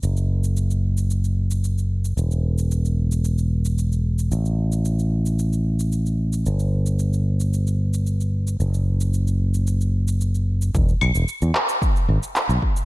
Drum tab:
SH |xx-xxx-xxx-xxx-x|xx-xxx-xxx-xxx-x|xx-xxx-xxx-xxx-x|xx-xxx-xxx-xxx-x|
CL |----------------|----------------|----------------|----------------|
CP |----------------|----------------|----------------|----------------|
BD |----------------|----------------|----------------|----------------|

SH |xx-xxx-xxx-xxx-x|xx-xxx-xxx-xxx-x|
CL |----------------|--x-------------|
CP |----------------|------x-----x---|
BD |----------------|o-------o-----o-|